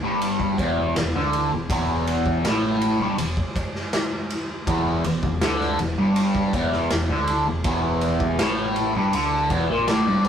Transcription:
0.02 picked electric bass G1, distorted electric guitar G2
0.21 ride
0.40 kick
0.58 picked electric bass E1, distorted electric guitar E2, kick, ride
0.95 picked electric bass E1, distorted electric guitar E2, snare, ride
1.14 picked electric bass D2, distorted electric guitar D3
1.33 ride
1.52 picked electric bass E1, distorted electric guitar E2
1.69 picked electric bass E1, distorted electric guitar E2, kick, ride
2.07 ride
2.26 kick
2.43 picked electric bass A1, distorted electric guitar A2, snare, ride
2.81 ride
2.98 picked electric bass G1, distorted electric guitar G2
3.17 picked electric bass E1, distorted electric guitar E2, ride
3.37 kick
3.56 kick, ride
3.75 snare
3.93 snare, ride
4.30 ride
4.67 picked electric bass E1, distorted electric guitar E2, kick, ride
5.03 picked electric bass E1, distorted electric guitar E2, ride
5.23 picked electric bass E1, distorted electric guitar E2, kick
5.41 picked electric bass D2, distorted electric guitar D3, snare, ride
5.61 snare
5.79 picked electric bass E1, distorted electric guitar E2, ride
5.97 picked electric bass G1, distorted electric guitar G2
6.16 ride
6.35 kick
6.53 picked electric bass E1, distorted electric guitar E2, kick, ride
6.72 snare
6.90 picked electric bass E1, distorted electric guitar E2, snare, ride
7.08 picked electric bass D2, distorted electric guitar D3
7.27 ride
7.45 picked electric bass E1, distorted electric guitar E2
7.64 picked electric bass E1, distorted electric guitar E2, kick, ride
8.01 ride
8.20 kick
8.38 picked electric bass A1, distorted electric guitar A2, snare, ride
8.76 ride
8.94 picked electric bass G1, distorted electric guitar G2
9.12 picked electric bass D2, distorted electric guitar D3, ride
9.50 picked electric bass E1, distorted electric guitar E2, kick, ride
9.69 picked electric bass A#1, distorted electric guitar A#2
9.87 picked electric bass A1, distorted electric guitar A2, lead electric guitar D5, snare, ride
10.06 picked electric bass G1, distorted electric guitar G2
10.24 picked electric bass A1, distorted electric guitar A2, ride

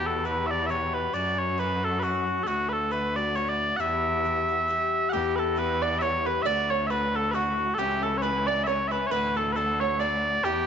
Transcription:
Already playing: cello E2, bouzouki B2 E3 B3 G4
0.06 bagpipes A4
0.25 bouzouki B2 E3 B3 G4, bagpipes B4
0.47 bagpipes D5 E5
0.66 bouzouki B2 E3, bagpipes C#5 E5
0.71 bouzouki B3 G4
0.94 bagpipes B4
1.14 cello F#2, bouzouki A2 F#3 C#4 F#4, bagpipes D5
1.39 bagpipes C#5
1.58 bouzouki A2 F#3 C#4 F#4, bagpipes B4
1.84 bagpipes A4
1.99 bouzouki A2 F#3, bagpipes B4
2.03 bouzouki C#4 F#4, bagpipes F#4
2.43 bouzouki A2 D3, bagpipes F#4 A4
2.48 cello D2, bouzouki A3 F#4
2.69 bagpipes A4 B4
2.91 bouzouki A2 D3 A3 F#4, bagpipes B4
3.16 bouzouki D3 A3 F#4, bagpipes D5
3.36 bouzouki A2 D3 A3 F#4, bagpipes C#5
3.49 bagpipes D5
3.76 cello E2, bouzouki G2 E3, bagpipes E5 F#5
3.81 bouzouki B3 G4
4.24 bouzouki G2 E3 B3 G4
4.49 bouzouki E3 B3 G4
4.68 bouzouki G2 E3 B3 G4
5.09 bouzouki G2 E3, bagpipes G4 F#5
5.13 cello E2, bouzouki B3 G4, five-string banjo G4
5.36 five-string banjo A4, bagpipes A4 B4
5.56 bouzouki G2 E3 B3 G4, five-string banjo B4, bagpipes B4
5.82 five-string banjo D5, bagpipes D5
5.99 bouzouki G2 E3 B3, five-string banjo C#5, bagpipes C#5 E5
6.03 bouzouki G4
6.26 bagpipes B4, five-string banjo B4
6.42 bouzouki A2 D3 A3, five-string banjo D5, bagpipes D5 E5
6.46 cello D2, bouzouki F#4
6.71 bagpipes C#5, five-string banjo C#5
6.87 bouzouki A2 D3, five-string banjo B4, bagpipes B4 E5
6.92 bouzouki A3 F#4
7.15 bagpipes A4, five-string banjo A4
7.31 bouzouki A2 D3, bagpipes F#4 B4, five-string banjo F#4
7.35 bouzouki A3 F#4
7.75 bouzouki A2, bagpipes A4
7.79 cello C#2, bouzouki E3 C#4 E4, bagpipes G4, five-string banjo G4
8.03 five-string banjo A4, bagpipes A4
8.18 bagpipes C#5
8.22 bouzouki A2 E3 C#4 E4, bagpipes B4, five-string banjo B4
8.47 bagpipes D5, five-string banjo D5
8.64 bouzouki A2 E3, bagpipes C#5 E5, five-string banjo C#5
8.68 bouzouki C#4 E4
8.88 bouzouki E4, five-string banjo B4, bagpipes B4 E5
8.92 bouzouki E3 C#4
9.07 bagpipes C#5
9.11 cello D2, bouzouki A2 E3 D4 F#4, bagpipes B4, five-string banjo B4
9.36 bagpipes A4, five-string banjo A4
9.52 bouzouki A2, bagpipes A4 B4
9.56 bouzouki E3 D4 F#4, five-string banjo A4
9.80 bagpipes C#5, five-string banjo C#5
10.00 bouzouki A2 E3 D4 F#4, bagpipes D5, five-string banjo D5
10.44 cello E2, bouzouki G2 E3 B3 G4, bagpipes G4, five-string banjo G4

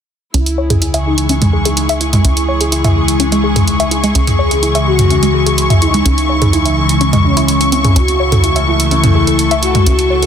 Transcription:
0.34 analog synth bass C#2, ambient pad C#3 E3 G#3, synth pluck C#4, analog synth lead E4, string section E4, closed hi-hat
0.46 closed hi-hat
0.58 string section G#4, synth pluck C#5
0.70 synth pluck G#4, closed hi-hat, mid tom
0.82 synth pluck E4, closed hi-hat
0.94 synth pluck E5, closed hi-hat
0.98 string section C#6
1.06 analog synth lead D#4
1.18 closed hi-hat
1.29 synth pluck C#4, closed hi-hat
1.42 synth pluck G#3, closed hi-hat, mid tom
1.53 synth pluck G#4
1.65 synth pluck G#4, closed hi-hat
1.77 closed hi-hat
1.89 synth pluck E5, closed hi-hat
2.01 analog synth lead E4, synth pluck E4, closed hi-hat
2.13 synth pluck G#3, closed hi-hat, mid tom
2.25 analog synth bass C#2, synth pluck C#4, closed hi-hat
2.37 closed hi-hat
2.48 synth pluck C#5
2.61 synth pluck G#4, closed hi-hat
2.72 synth pluck E4, closed hi-hat
2.84 synth pluck E5, closed hi-hat, mid tom
3.08 closed hi-hat
3.20 synth pluck C#4, closed hi-hat
3.32 synth pluck G#3, closed hi-hat
3.44 analog synth lead D#4, synth pluck G#4
3.56 synth pluck G#4, closed hi-hat, mid tom
3.68 closed hi-hat
3.80 synth pluck E5, closed hi-hat
3.91 synth pluck E4, closed hi-hat
4.04 synth pluck G#3, closed hi-hat
4.15 analog synth bass C#2, synth pluck C#4, analog synth lead G#4, closed hi-hat
4.27 closed hi-hat, mid tom
4.39 synth pluck C#5
4.51 synth pluck G#4, closed hi-hat
4.63 synth pluck E4, closed hi-hat
4.75 synth pluck E5, closed hi-hat
4.87 analog synth lead F#4
4.99 closed hi-hat, mid tom
5.10 synth pluck C#4, closed hi-hat
5.23 synth pluck G#3, closed hi-hat
5.34 synth pluck G#4
5.46 synth pluck G#4, closed hi-hat
5.58 closed hi-hat
5.70 synth pluck E5, closed hi-hat, mid tom
5.82 analog synth lead D#4, synth pluck E4, closed hi-hat
5.94 synth pluck G#3, closed hi-hat
6.06 analog synth bass C#2, synth pluck C#4, closed hi-hat
6.18 closed hi-hat
6.29 synth pluck C#5
6.42 synth pluck G#4, closed hi-hat, mid tom
6.53 synth pluck E4, closed hi-hat
6.65 synth pluck E5, closed hi-hat
6.89 closed hi-hat
7.01 synth pluck C#4, closed hi-hat
7.13 synth pluck G#3, closed hi-hat, mid tom
7.25 analog synth lead C#4, synth pluck E4
7.37 synth pluck E4, closed hi-hat
7.48 closed hi-hat
7.61 synth pluck C#4, closed hi-hat
7.72 synth pluck C4, closed hi-hat
7.84 synth pluck G#4, closed hi-hat, mid tom
7.96 analog synth bass C#2, ambient pad A3, synth pluck C#4, analog synth lead F#4, closed hi-hat
8.08 string section A4, closed hi-hat
8.20 synth pluck C#5
8.32 synth pluck A4, closed hi-hat, mid tom
8.44 synth pluck E4, closed hi-hat
8.56 synth pluck E5, closed hi-hat
8.67 analog synth lead E4
8.80 closed hi-hat
8.91 synth pluck C#4, closed hi-hat
9.04 synth pluck C#4, closed hi-hat, mid tom
9.15 synth pluck G#4
9.27 synth pluck A4, closed hi-hat
9.39 closed hi-hat
9.51 synth pluck E5, closed hi-hat
9.63 synth pluck E4, analog synth lead F#4, closed hi-hat
9.75 synth pluck G#3, closed hi-hat, mid tom
9.86 analog synth bass C#2, synth pluck C#4, closed hi-hat
9.99 closed hi-hat
10.10 synth pluck C#5
10.23 synth pluck A4, closed hi-hat

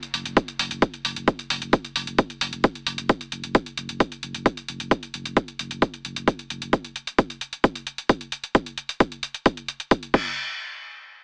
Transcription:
0.03 closed hi-hat
0.14 sub bass F#1, open hi-hat
0.25 sub bass F#1, closed hi-hat
0.37 kick, closed hi-hat
0.48 closed hi-hat
0.59 sub bass F#1, open hi-hat
0.71 sub bass F#1, closed hi-hat
0.82 kick, closed hi-hat
0.94 closed hi-hat
1.05 sub bass F#1, open hi-hat
1.16 sub bass F#1, closed hi-hat
1.28 kick, closed hi-hat
1.39 closed hi-hat
1.50 sub bass F#1, open hi-hat
1.62 sub bass F#1, closed hi-hat
1.73 kick, closed hi-hat
1.85 closed hi-hat
1.96 sub bass F#1, open hi-hat
2.07 sub bass F#1, closed hi-hat
2.18 kick, closed hi-hat
2.30 closed hi-hat
2.41 sub bass F#1, open hi-hat
2.53 sub bass F#1, closed hi-hat
2.64 kick, closed hi-hat
2.75 closed hi-hat
2.87 sub bass F#1, open hi-hat
2.98 sub bass F#1, closed hi-hat
3.09 kick, closed hi-hat
3.21 closed hi-hat
3.32 sub bass F#1, closed hi-hat
3.44 sub bass F#1, closed hi-hat
3.55 kick, closed hi-hat
3.66 closed hi-hat
3.77 sub bass F#1, closed hi-hat
3.89 sub bass F#1, closed hi-hat
4.00 kick, closed hi-hat
4.12 closed hi-hat
4.23 sub bass F#1, closed hi-hat
4.34 sub bass F#1, closed hi-hat
4.46 kick, closed hi-hat
4.57 closed hi-hat
4.68 sub bass F#1, closed hi-hat
4.80 sub bass F#1, closed hi-hat
4.91 kick, closed hi-hat
5.03 closed hi-hat
5.14 sub bass F#1, closed hi-hat
5.25 sub bass F#1, closed hi-hat
5.37 kick, closed hi-hat
5.48 closed hi-hat
5.59 sub bass F#1, closed hi-hat
5.71 sub bass F#1, closed hi-hat
5.82 kick, closed hi-hat
5.94 closed hi-hat
6.05 sub bass F#1, closed hi-hat
6.16 sub bass F#1, closed hi-hat
6.28 kick, closed hi-hat
6.39 closed hi-hat
6.50 sub bass F#1, closed hi-hat
6.62 sub bass F#1, closed hi-hat
6.73 kick, closed hi-hat
6.84 closed hi-hat
6.96 closed hi-hat
7.07 closed hi-hat
7.18 kick, closed hi-hat
7.30 closed hi-hat
7.41 closed hi-hat
7.53 closed hi-hat
7.64 kick, closed hi-hat
7.75 closed hi-hat
7.87 closed hi-hat
7.98 closed hi-hat
8.09 kick, closed hi-hat
8.21 closed hi-hat
8.32 closed hi-hat
8.44 closed hi-hat
8.55 kick, closed hi-hat
8.66 closed hi-hat
8.78 closed hi-hat
8.89 closed hi-hat
9.00 kick, closed hi-hat
9.12 closed hi-hat
9.23 closed hi-hat
9.34 closed hi-hat
9.46 kick, closed hi-hat
9.57 closed hi-hat
9.68 closed hi-hat
9.80 closed hi-hat
9.91 kick, closed hi-hat
10.03 closed hi-hat
10.14 kick, crash

